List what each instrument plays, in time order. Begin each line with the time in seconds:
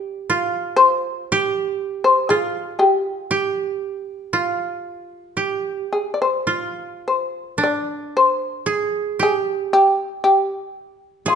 Already playing: koto F4 G4, shamisen D5
0.30 koto F4
0.76 shamisen C5
1.32 koto G4
2.04 shamisen C5
2.29 koto F4, shamisen G#4
2.79 shamisen G4 G#4
3.31 koto G4
4.33 koto F4
5.37 koto G4
5.93 shamisen G#4
6.14 shamisen D5
6.22 shamisen C5
6.47 koto F4
7.08 shamisen C5
7.58 koto D4
7.63 shamisen D5
8.17 shamisen C5
8.66 koto G#4
9.19 koto G4, shamisen G#4
9.73 shamisen G4
10.24 shamisen G4
11.26 shamisen F4, koto G#4